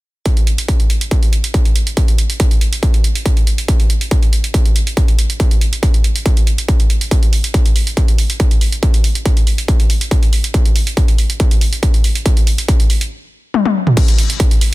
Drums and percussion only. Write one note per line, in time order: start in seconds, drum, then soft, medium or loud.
0.26 kick loud
0.26 closed hi-hat medium
0.37 closed hi-hat medium
0.47 closed hi-hat medium
0.58 closed hi-hat medium
0.68 kick loud
0.68 closed hi-hat medium
0.80 closed hi-hat medium
0.90 closed hi-hat medium
1.01 closed hi-hat medium
1.11 kick loud
1.11 closed hi-hat medium
1.23 closed hi-hat medium
1.33 closed hi-hat medium
1.44 closed hi-hat medium
1.54 kick loud
1.54 closed hi-hat medium
1.65 closed hi-hat medium
1.76 closed hi-hat medium
1.87 closed hi-hat medium
1.97 kick loud
1.97 closed hi-hat medium
2.08 closed hi-hat medium
2.18 closed hi-hat medium
2.30 closed hi-hat medium
2.40 kick loud
2.40 closed hi-hat medium
2.51 closed hi-hat medium
2.61 closed hi-hat medium
2.73 closed hi-hat medium
2.83 kick loud
2.83 closed hi-hat medium
2.94 closed hi-hat medium
3.04 closed hi-hat medium
3.15 closed hi-hat medium
3.26 kick loud
3.26 closed hi-hat medium
3.37 closed hi-hat medium
3.47 closed hi-hat medium
3.58 closed hi-hat medium
3.68 kick loud
3.68 closed hi-hat medium
3.80 closed hi-hat medium
3.90 closed hi-hat medium
4.01 closed hi-hat medium
4.11 kick loud
4.11 closed hi-hat medium
4.23 closed hi-hat medium
4.33 closed hi-hat medium
4.44 closed hi-hat soft
4.54 kick loud
4.54 closed hi-hat medium
4.66 closed hi-hat medium
4.76 closed hi-hat medium
4.87 closed hi-hat medium
4.97 kick loud
4.97 closed hi-hat medium
5.08 closed hi-hat medium
5.19 closed hi-hat medium
5.30 closed hi-hat medium
5.40 kick loud
5.40 closed hi-hat medium
5.51 closed hi-hat medium
5.61 closed hi-hat medium
5.73 closed hi-hat soft
5.83 kick loud
5.83 closed hi-hat medium
5.94 closed hi-hat medium
6.04 closed hi-hat medium
6.16 closed hi-hat soft
6.26 kick loud
6.26 closed hi-hat medium
6.37 closed hi-hat soft
6.47 closed hi-hat medium
6.58 closed hi-hat medium
6.68 kick loud
6.68 closed hi-hat medium
6.80 closed hi-hat medium
6.90 closed hi-hat medium
7.01 closed hi-hat soft
7.11 kick loud
7.11 closed hi-hat medium
7.23 closed hi-hat soft
7.33 open hi-hat loud
7.44 closed hi-hat soft
7.54 kick loud
7.54 closed hi-hat medium
7.66 closed hi-hat soft
7.76 open hi-hat medium
7.87 closed hi-hat soft
7.97 kick loud
7.97 closed hi-hat medium
8.08 closed hi-hat soft
8.18 open hi-hat loud
8.30 closed hi-hat medium
8.40 kick loud
8.40 closed hi-hat medium
8.51 closed hi-hat soft
8.61 open hi-hat medium
8.72 closed hi-hat soft
8.83 kick loud
8.83 closed hi-hat medium
8.94 closed hi-hat medium
9.04 open hi-hat loud
9.15 closed hi-hat soft
9.26 kick loud
9.26 closed hi-hat medium
9.37 closed hi-hat soft
9.47 open hi-hat medium
9.58 closed hi-hat soft
9.68 kick loud
9.68 closed hi-hat medium
9.80 closed hi-hat soft
9.90 open hi-hat loud
10.01 closed hi-hat soft
10.11 kick loud
10.11 closed hi-hat medium
10.23 closed hi-hat soft
10.33 open hi-hat medium
10.44 closed hi-hat soft
10.54 kick loud
10.54 closed hi-hat medium
10.65 closed hi-hat soft
10.76 open hi-hat loud
10.87 closed hi-hat medium
10.97 kick loud
10.97 closed hi-hat medium
11.08 closed hi-hat medium
11.18 open hi-hat medium
11.30 closed hi-hat soft
11.40 kick loud
11.40 closed hi-hat medium
11.51 closed hi-hat medium
11.61 open hi-hat loud
11.73 closed hi-hat medium
11.83 kick loud
11.83 closed hi-hat medium
11.94 closed hi-hat soft
12.04 open hi-hat medium
12.15 closed hi-hat medium
12.26 kick loud
12.26 closed hi-hat medium
12.37 closed hi-hat medium
12.47 open hi-hat loud
12.58 closed hi-hat medium
12.68 kick loud
12.68 closed hi-hat medium
12.80 closed hi-hat medium
12.90 open hi-hat medium
13.01 closed hi-hat medium
13.54 high tom medium
13.65 high tom medium
13.87 mid tom medium
13.97 kick loud
13.97 closed hi-hat medium
13.97 crash medium
14.08 closed hi-hat medium
14.18 open hi-hat loud
14.30 closed hi-hat medium
14.40 kick loud
14.40 closed hi-hat loud
14.51 closed hi-hat medium
14.61 open hi-hat loud